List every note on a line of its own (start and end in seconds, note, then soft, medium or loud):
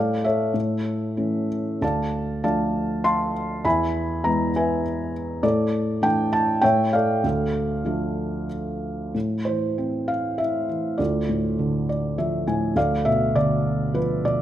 0.00 0.52 A2 medium
0.00 0.24 A4 medium
0.00 0.52 D5 soft
0.00 0.25 F5 medium
0.24 1.48 A4 soft
0.24 1.47 C#5 soft
0.24 1.47 E5 medium
0.54 1.78 A2 medium
1.17 1.80 E3 soft
1.17 1.80 A3 soft
1.17 1.80 C#4 soft
1.81 3.60 D2 soft
1.81 2.43 D5 soft
1.81 2.43 F5 soft
1.81 2.42 A5 medium
2.43 3.03 F3 soft
2.43 3.03 A3 soft
2.43 3.03 D4 soft
2.43 3.31 D5 soft
2.43 3.03 F5 soft
2.43 3.01 A5 medium
3.04 3.61 F5 medium
3.04 3.61 A5 medium
3.04 3.66 C6 medium
3.65 5.39 E2 medium
3.65 4.50 E5 medium
3.65 4.50 G#5 medium
3.65 4.26 B5 medium
4.24 4.82 E3 soft
4.24 4.82 G#3 soft
4.24 4.82 B3 soft
4.24 4.52 A#5 medium
4.56 5.41 B4 soft
4.56 5.41 E5 soft
4.56 5.11 G#5 medium
5.43 6.59 A2 medium
5.43 6.29 A4 soft
5.43 6.05 D5 medium
6.02 6.60 E3 soft
6.02 6.61 A3 soft
6.02 6.61 D4 medium
6.02 6.34 G5 medium
6.33 6.64 A5 medium
6.62 7.22 A2 medium
6.62 7.20 C#5 medium
6.62 7.21 E5 medium
6.62 6.94 G5 medium
6.93 8.47 A4 medium
6.93 8.47 D5 medium
6.93 8.46 F5 medium
7.24 9.11 D2 medium
7.85 8.48 F3 soft
7.85 8.48 A3 soft
7.85 8.48 D4 soft
9.14 10.95 A2 soft
9.45 10.66 E3 soft
9.45 10.10 C5 medium
9.78 10.96 C4 soft
10.08 10.40 F5 medium
10.38 10.98 E4 soft
10.38 11.01 E5 medium
10.69 10.98 E3 soft
10.98 12.72 D2 medium
10.98 12.14 F4 soft
10.98 11.88 D5 medium
11.29 12.43 A2 soft
11.59 12.73 D3 soft
11.89 12.16 D5 medium
12.18 12.75 F3 soft
12.18 12.45 E5 medium
12.47 12.76 A2 soft
12.47 12.75 G#5 medium
12.76 14.42 D2 medium
12.76 13.34 D5 medium
12.76 13.07 F5 medium
13.05 14.22 B2 soft
13.05 13.36 E5 medium
13.35 14.42 D3 soft
13.35 13.97 D5 medium
13.94 14.42 F3 soft
13.94 14.23 B4 medium
14.25 14.42 B2 soft
14.25 14.42 D5 medium